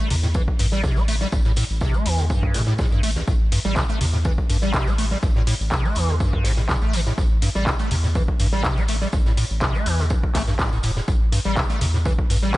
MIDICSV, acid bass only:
0, 0, Header, 1, 2, 480
1, 0, Start_track
1, 0, Key_signature, 0, "minor"
1, 0, Tempo, 487805
1, 1304, Time_signature, 4, 2, 24, 8
1, 12370, End_track
2, 0, Start_track
2, 0, Title_t, "Acid bass"
2, 0, Program_c, 0, 38
2, 105, Note_on_c, 0, 48, 102
2, 146, Note_off_c, 0, 48, 0
2, 231, Note_on_c, 0, 45, 74
2, 269, Note_off_c, 0, 45, 0
2, 345, Note_on_c, 0, 52, 80
2, 414, Note_off_c, 0, 52, 0
2, 584, Note_on_c, 0, 43, 105
2, 654, Note_off_c, 0, 43, 0
2, 711, Note_on_c, 0, 55, 95
2, 805, Note_off_c, 0, 55, 0
2, 824, Note_on_c, 0, 48, 94
2, 950, Note_on_c, 0, 57, 103
2, 965, Note_off_c, 0, 48, 0
2, 1013, Note_off_c, 0, 57, 0
2, 1063, Note_on_c, 0, 57, 72
2, 1134, Note_off_c, 0, 57, 0
2, 1191, Note_on_c, 0, 55, 75
2, 1253, Note_off_c, 0, 55, 0
2, 1304, Note_on_c, 0, 43, 79
2, 1346, Note_off_c, 0, 43, 0
2, 1431, Note_on_c, 0, 45, 73
2, 1493, Note_off_c, 0, 45, 0
2, 1543, Note_on_c, 0, 45, 99
2, 1613, Note_off_c, 0, 45, 0
2, 1783, Note_on_c, 0, 48, 99
2, 1909, Note_on_c, 0, 57, 96
2, 1923, Note_off_c, 0, 48, 0
2, 2023, Note_on_c, 0, 52, 100
2, 2037, Note_off_c, 0, 57, 0
2, 2149, Note_on_c, 0, 50, 74
2, 2164, Note_off_c, 0, 52, 0
2, 2212, Note_off_c, 0, 50, 0
2, 2263, Note_on_c, 0, 43, 79
2, 2502, Note_on_c, 0, 48, 102
2, 2517, Note_off_c, 0, 43, 0
2, 2573, Note_off_c, 0, 48, 0
2, 2630, Note_on_c, 0, 45, 73
2, 2693, Note_off_c, 0, 45, 0
2, 2742, Note_on_c, 0, 45, 96
2, 2813, Note_off_c, 0, 45, 0
2, 2870, Note_on_c, 0, 43, 103
2, 2964, Note_off_c, 0, 43, 0
2, 2983, Note_on_c, 0, 57, 68
2, 3053, Note_off_c, 0, 57, 0
2, 3110, Note_on_c, 0, 33, 104
2, 3173, Note_off_c, 0, 33, 0
2, 3223, Note_on_c, 0, 45, 76
2, 3265, Note_off_c, 0, 45, 0
2, 3463, Note_on_c, 0, 43, 100
2, 3534, Note_off_c, 0, 43, 0
2, 3590, Note_on_c, 0, 55, 105
2, 3684, Note_off_c, 0, 55, 0
2, 3703, Note_on_c, 0, 48, 96
2, 3774, Note_off_c, 0, 48, 0
2, 3830, Note_on_c, 0, 57, 74
2, 3924, Note_off_c, 0, 57, 0
2, 3944, Note_on_c, 0, 48, 104
2, 3986, Note_off_c, 0, 48, 0
2, 4069, Note_on_c, 0, 45, 72
2, 4108, Note_off_c, 0, 45, 0
2, 4183, Note_on_c, 0, 52, 86
2, 4253, Note_off_c, 0, 52, 0
2, 4423, Note_on_c, 0, 43, 99
2, 4493, Note_off_c, 0, 43, 0
2, 4549, Note_on_c, 0, 55, 98
2, 4643, Note_off_c, 0, 55, 0
2, 4663, Note_on_c, 0, 48, 94
2, 4789, Note_on_c, 0, 57, 99
2, 4804, Note_off_c, 0, 48, 0
2, 4852, Note_off_c, 0, 57, 0
2, 4902, Note_on_c, 0, 57, 70
2, 4973, Note_off_c, 0, 57, 0
2, 5030, Note_on_c, 0, 55, 74
2, 5093, Note_off_c, 0, 55, 0
2, 5143, Note_on_c, 0, 43, 76
2, 5185, Note_off_c, 0, 43, 0
2, 5270, Note_on_c, 0, 45, 77
2, 5333, Note_off_c, 0, 45, 0
2, 5383, Note_on_c, 0, 45, 99
2, 5453, Note_off_c, 0, 45, 0
2, 5623, Note_on_c, 0, 48, 98
2, 5750, Note_on_c, 0, 57, 100
2, 5765, Note_off_c, 0, 48, 0
2, 5864, Note_on_c, 0, 52, 100
2, 5878, Note_off_c, 0, 57, 0
2, 5990, Note_on_c, 0, 50, 76
2, 6005, Note_off_c, 0, 52, 0
2, 6053, Note_off_c, 0, 50, 0
2, 6103, Note_on_c, 0, 43, 80
2, 6344, Note_on_c, 0, 45, 102
2, 6358, Note_off_c, 0, 43, 0
2, 6414, Note_off_c, 0, 45, 0
2, 6470, Note_on_c, 0, 45, 76
2, 6508, Note_off_c, 0, 45, 0
2, 6583, Note_on_c, 0, 48, 92
2, 6654, Note_off_c, 0, 48, 0
2, 6711, Note_on_c, 0, 57, 79
2, 6824, Note_on_c, 0, 52, 97
2, 6839, Note_off_c, 0, 57, 0
2, 6894, Note_off_c, 0, 52, 0
2, 6951, Note_on_c, 0, 45, 78
2, 7013, Note_off_c, 0, 45, 0
2, 7064, Note_on_c, 0, 45, 78
2, 7106, Note_off_c, 0, 45, 0
2, 7304, Note_on_c, 0, 43, 99
2, 7374, Note_off_c, 0, 43, 0
2, 7432, Note_on_c, 0, 55, 105
2, 7525, Note_off_c, 0, 55, 0
2, 7545, Note_on_c, 0, 48, 95
2, 7614, Note_off_c, 0, 48, 0
2, 7671, Note_on_c, 0, 57, 75
2, 7765, Note_off_c, 0, 57, 0
2, 7785, Note_on_c, 0, 48, 104
2, 7826, Note_off_c, 0, 48, 0
2, 7911, Note_on_c, 0, 45, 72
2, 7949, Note_off_c, 0, 45, 0
2, 8025, Note_on_c, 0, 52, 84
2, 8094, Note_off_c, 0, 52, 0
2, 8264, Note_on_c, 0, 43, 102
2, 8334, Note_off_c, 0, 43, 0
2, 8391, Note_on_c, 0, 55, 98
2, 8484, Note_off_c, 0, 55, 0
2, 8504, Note_on_c, 0, 48, 100
2, 8631, Note_on_c, 0, 57, 103
2, 8646, Note_off_c, 0, 48, 0
2, 8693, Note_off_c, 0, 57, 0
2, 8745, Note_on_c, 0, 57, 70
2, 8814, Note_off_c, 0, 57, 0
2, 8870, Note_on_c, 0, 55, 76
2, 8933, Note_off_c, 0, 55, 0
2, 8983, Note_on_c, 0, 43, 75
2, 9026, Note_off_c, 0, 43, 0
2, 9110, Note_on_c, 0, 45, 77
2, 9173, Note_off_c, 0, 45, 0
2, 9222, Note_on_c, 0, 45, 95
2, 9293, Note_off_c, 0, 45, 0
2, 9462, Note_on_c, 0, 48, 102
2, 9588, Note_on_c, 0, 57, 101
2, 9603, Note_off_c, 0, 48, 0
2, 9701, Note_on_c, 0, 52, 103
2, 9716, Note_off_c, 0, 57, 0
2, 9829, Note_on_c, 0, 50, 73
2, 9843, Note_off_c, 0, 52, 0
2, 9892, Note_off_c, 0, 50, 0
2, 9942, Note_on_c, 0, 43, 81
2, 9985, Note_off_c, 0, 43, 0
2, 10182, Note_on_c, 0, 57, 76
2, 10253, Note_off_c, 0, 57, 0
2, 10309, Note_on_c, 0, 43, 76
2, 10373, Note_off_c, 0, 43, 0
2, 10422, Note_on_c, 0, 45, 80
2, 10528, Note_off_c, 0, 45, 0
2, 10547, Note_on_c, 0, 45, 78
2, 10611, Note_off_c, 0, 45, 0
2, 10661, Note_on_c, 0, 45, 92
2, 10733, Note_off_c, 0, 45, 0
2, 10789, Note_on_c, 0, 45, 78
2, 10827, Note_off_c, 0, 45, 0
2, 10901, Note_on_c, 0, 45, 76
2, 10945, Note_off_c, 0, 45, 0
2, 11142, Note_on_c, 0, 43, 97
2, 11213, Note_off_c, 0, 43, 0
2, 11269, Note_on_c, 0, 55, 98
2, 11363, Note_off_c, 0, 55, 0
2, 11382, Note_on_c, 0, 48, 98
2, 11453, Note_off_c, 0, 48, 0
2, 11509, Note_on_c, 0, 57, 75
2, 11603, Note_off_c, 0, 57, 0
2, 11621, Note_on_c, 0, 48, 98
2, 11665, Note_off_c, 0, 48, 0
2, 11748, Note_on_c, 0, 45, 72
2, 11787, Note_off_c, 0, 45, 0
2, 11861, Note_on_c, 0, 52, 81
2, 11933, Note_off_c, 0, 52, 0
2, 12102, Note_on_c, 0, 43, 99
2, 12173, Note_off_c, 0, 43, 0
2, 12228, Note_on_c, 0, 55, 98
2, 12323, Note_off_c, 0, 55, 0
2, 12370, End_track
0, 0, End_of_file